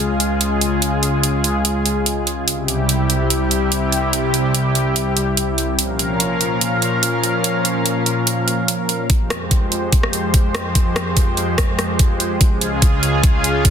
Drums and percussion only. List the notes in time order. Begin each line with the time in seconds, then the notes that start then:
0.20 closed hi-hat
0.41 closed hi-hat
0.61 closed hi-hat
0.82 closed hi-hat
1.03 closed hi-hat
1.23 closed hi-hat
1.44 closed hi-hat
1.65 closed hi-hat
1.86 closed hi-hat
2.06 closed hi-hat
2.27 closed hi-hat
2.48 closed hi-hat
2.68 closed hi-hat
2.89 closed hi-hat
3.10 closed hi-hat
3.30 closed hi-hat
3.51 closed hi-hat
3.72 closed hi-hat
3.92 closed hi-hat
4.13 closed hi-hat
4.34 closed hi-hat
4.55 closed hi-hat
4.75 closed hi-hat
4.96 closed hi-hat
5.17 closed hi-hat
5.37 closed hi-hat
5.58 closed hi-hat
5.79 closed hi-hat
5.99 closed hi-hat
6.20 closed hi-hat
6.41 closed hi-hat
6.61 closed hi-hat
6.82 closed hi-hat
7.03 closed hi-hat
7.24 closed hi-hat
7.44 closed hi-hat
7.65 closed hi-hat
7.86 closed hi-hat
8.06 closed hi-hat
8.27 closed hi-hat
8.48 closed hi-hat
8.68 closed hi-hat
8.89 closed hi-hat
9.10 kick, closed hi-hat
9.30 cross-stick, closed hi-hat
9.51 kick, closed hi-hat
9.72 closed hi-hat
9.92 kick, closed hi-hat
10.03 cross-stick
10.13 closed hi-hat
10.34 kick, closed hi-hat
10.55 cross-stick, closed hi-hat
10.75 kick, closed hi-hat
10.96 cross-stick, closed hi-hat
11.17 kick, closed hi-hat
11.37 closed hi-hat
11.58 kick, cross-stick, closed hi-hat
11.79 cross-stick, closed hi-hat
11.99 kick, closed hi-hat
12.20 closed hi-hat
12.41 kick, closed hi-hat
12.61 closed hi-hat
12.82 kick, closed hi-hat
13.03 closed hi-hat
13.23 kick, closed hi-hat
13.44 closed hi-hat
13.65 kick, closed hi-hat